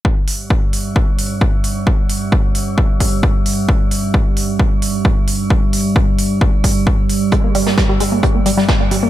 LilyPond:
<<
  \new Staff \with { instrumentName = "Synth arpeggio sound" } { \clef bass \time 4/4 \key c \minor \tempo 4 = 132 r1 | r1 | r1 | r1 |
aes16 bes16 g16 bes16 g16 g16 aes16 bes16 g16 bes16 g16 g16 aes16 bes16 g16 bes16 | }
  \new Staff \with { instrumentName = "Synth drone" } { \clef bass \time 4/4 \key c \minor <g, g>1~ | <g, g>1~ | <g, g>1~ | <g, g>1~ |
<g, g>1 | }
  \new DrumStaff \with { instrumentName = "Drums" } \drummode { \time 4/4 bd8 hho8 bd8 hho8 bd8 hho8 bd8 hho8 | bd8 hho8 bd8 hho8 bd8 <hho bd>8 bd8 hho8 | bd8 hho8 bd8 hho8 bd8 hho8 bd8 hho8 | bd8 hho8 bd8 hho8 bd8 <hho bd>8 bd8 hho8 |
<hh bd>8 <hh hho>16 sn16 <hh bd sn>8 <hh hho>8 <hh bd>8 <hh hho>16 sn16 <hh bd sn>8 <hh hho>8 | }
>>